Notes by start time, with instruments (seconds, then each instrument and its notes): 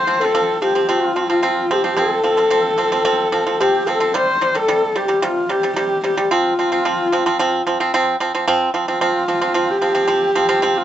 Already playing: xiao C5, horsehead fiddle C5
0.07 pipa F3 C4
0.20 pipa F3 C4, xiao A4, horsehead fiddle A4
0.35 pipa F3 C4
0.62 pipa F3 C4, xiao G4, horsehead fiddle G4
0.75 pipa F3 C4
0.88 pipa F3 C4, xiao F4
0.92 horsehead fiddle F4
1.16 pipa F3 C4
1.29 pipa F3 C4, xiao F4, horsehead fiddle F4
1.42 pipa F3 C4
1.71 pipa F3 C4, horsehead fiddle G4, xiao A4
1.76 xiao G4
1.84 pipa F3 C4
1.97 pipa F3 C4, horsehead fiddle A4, xiao C5
2.01 xiao A4
2.24 pipa F3 C4
2.37 pipa F3 C4
2.50 pipa F3 C4
2.78 pipa F3 C4
2.92 pipa F3 C4
3.05 pipa F3 C4
3.32 pipa F3 C4
3.47 pipa F3 C4
3.59 pipa F3 C4, xiao G4, horsehead fiddle G4
3.87 pipa F3 C4, horsehead fiddle A4, xiao A4 C5
4.00 pipa F3 C4
4.14 pipa C3 G3, xiao C5, horsehead fiddle C5
4.41 pipa C3 G3
4.55 pipa C3 G3, horsehead fiddle A4, xiao C5
4.59 xiao A4
4.68 pipa C3 G3
4.95 pipa C3 G3, xiao G4, horsehead fiddle G4
5.08 pipa C3 G3
5.22 pipa C3 G3, xiao F4, horsehead fiddle F4
5.49 pipa C3 G3, xiao G4, horsehead fiddle G4
5.63 pipa C3 G3
5.76 pipa C3 G3, xiao G4, horsehead fiddle G4
6.04 pipa C3 G3, xiao G4, horsehead fiddle G4
6.17 pipa C3 G3
6.24 horsehead fiddle G4
6.31 pipa F3 C4, horsehead fiddle F4, xiao F4
6.59 pipa F3 C4
6.72 pipa F3 C4
6.85 pipa F3 C4
7.12 pipa F3 C4
7.26 pipa F3 C4
7.39 pipa F3 C4
7.67 pipa F3 C4
7.80 pipa F3 C4
7.94 pipa F3 C4
8.20 pipa F3 C4
8.35 pipa F3 C4
8.48 pipa F3 C4
8.74 pipa F3 C4
8.88 pipa F3 C4, horsehead fiddle F4
9.01 pipa F3 C4
9.28 pipa F3 C4
9.41 pipa F3 C4
9.54 pipa F3 C4
9.71 horsehead fiddle G4
9.82 pipa F3 C4
9.95 pipa F3 C4
10.07 pipa F3 C4
10.35 pipa F3 C4
10.49 pipa F3 C4
10.62 pipa F3 C4
10.78 horsehead fiddle F4